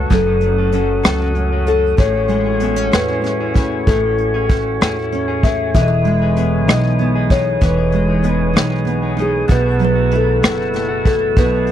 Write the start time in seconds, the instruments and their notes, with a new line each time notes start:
Already playing: nylon-string guitar F#3 A3 C#4, clean electric guitar A3 F#4 A4, tonewheel organ F#4 C#5 F#5
0.10 upright bass F#1, clean electric guitar F#2 C#3 F#3 A3 F#4 A4, kalimba A4, tonewheel organ D#6, kick, closed hi-hat
0.27 clean electric guitar F#3 A3 F#4 A4
0.41 nylon-string guitar A3, closed hi-hat
0.58 clean electric guitar F#3 A3 F#4 A4
0.72 clean electric guitar F#3 A3 F#4 A4, nylon-string guitar C#4, closed hi-hat
1.04 upright bass C#2, clean electric guitar F#2 C#3 F#3 A3 F#4 A4, cross-stick, closed hi-hat
1.21 clean electric guitar F#3 A3 F#4 A4
1.35 nylon-string guitar C#4, closed hi-hat
1.52 clean electric guitar F#3 A3 F#4 A4
1.66 clean electric guitar F#3 A3 F#4 A4, kalimba A4, closed hi-hat
1.97 upright bass A1, nylon-string guitar A2, clean electric guitar A3 C#4 E4 G#4, tonewheel organ C#5 G#5 C#6, kalimba C#5, kick, closed hi-hat
2.14 clean electric guitar C#4 E4 G#4
2.28 nylon-string guitar G#3, closed hi-hat
2.46 clean electric guitar C#4 E4 G#4
2.60 clean electric guitar A3 C#4, nylon-string guitar B3, closed hi-hat
2.64 clean electric guitar E4 G#4
2.76 nylon-string guitar C#4
2.92 upright bass E2, clean electric guitar A3 C#4 E4 G#4, kalimba B4, cross-stick, closed hi-hat
3.08 clean electric guitar C#4 E4 G#4
3.22 nylon-string guitar C#4, cross-stick, closed hi-hat
3.40 clean electric guitar C#4 E4 G#4
3.55 clean electric guitar A3 C#4 E4 G#4, kick, closed hi-hat
3.87 upright bass A1, nylon-string guitar A2, clean electric guitar A3 C#4 E4 G#4, kalimba A4, kick, closed hi-hat
4.05 clean electric guitar C#4 E4
4.18 closed hi-hat
4.34 clean electric guitar C#4 E4 G#4
4.49 clean electric guitar A3 C#4 E4, kick, closed hi-hat
4.81 upright bass E2, clean electric guitar A3 C#4 E4 G#4, cross-stick, closed hi-hat
4.98 clean electric guitar C#4 E4
5.12 nylon-string guitar C#4, closed hi-hat
5.28 clean electric guitar C#4 E4 G#4
5.43 clean electric guitar A3 C#4 E4 G#4, kalimba E5, kick, closed hi-hat
5.75 upright bass E1, clean electric guitar E3 G#3 B3 D#4 G#4, tonewheel organ B4 D#6, kalimba E5, kick, closed hi-hat
5.82 kalimba D#5
5.88 clean electric guitar G#4, kalimba E5
5.92 clean electric guitar B3
6.05 nylon-string guitar G#3, closed hi-hat
6.22 clean electric guitar B3 D#4 G#4
6.36 clean electric guitar G#3 B3 G#4, closed hi-hat
6.68 upright bass B1, clean electric guitar E3 G#3 B3 D#4 G#4, kalimba D#5, cross-stick, closed hi-hat
6.84 clean electric guitar B3 D#4 G#4
6.99 nylon-string guitar B3, closed hi-hat
7.15 clean electric guitar B3 D#4 G#4
7.30 clean electric guitar G#3 B3 D#4 G#4, kalimba C#5, kick, closed hi-hat
7.61 upright bass E1, clean electric guitar E3 G#3 B3 D#4 G#4, kalimba B4, kick, closed hi-hat
7.77 clean electric guitar B3 D#4 G#4
7.92 nylon-string guitar G#3, closed hi-hat
8.08 clean electric guitar B3 D#4 G#4
8.24 clean electric guitar G#3 B3 D#4 G#4, closed hi-hat
8.55 upright bass B1, clean electric guitar E3 G#3 B3 D#4 G#4, cross-stick, closed hi-hat
8.71 clean electric guitar B3 D#4 G#4
8.85 nylon-string guitar B3, closed hi-hat
9.02 clean electric guitar B3 D#4 G#4
9.18 clean electric guitar G#3 B3 D#4 G#4, kalimba G#4, closed hi-hat
9.48 upright bass B1, clean electric guitar B2 E3 A3 E4 F#4, tonewheel organ F#5 A5 E6, kick, closed hi-hat
9.52 kalimba B4
9.64 clean electric guitar A3 E4 F#4
9.79 nylon-string guitar F#3, closed hi-hat
9.85 kalimba B4
9.95 clean electric guitar A3 E4 F#4
10.11 clean electric guitar E3 A3 E4 F#4, closed hi-hat
10.16 kalimba A4
10.42 clean electric guitar B2 E3 A3 E4 F#4, cross-stick, closed hi-hat
10.58 clean electric guitar A3 E4 F#4
10.73 nylon-string guitar A3, cross-stick, closed hi-hat
10.89 clean electric guitar A3 E4 F#4
11.05 clean electric guitar E3 A3 E4 F#4, kalimba A4, kick, closed hi-hat
11.36 upright bass B1, clean electric guitar B2 E3 A3 E4 F#4, kalimba B4, kick, closed hi-hat
11.52 clean electric guitar A3 E4 F#4
11.67 closed hi-hat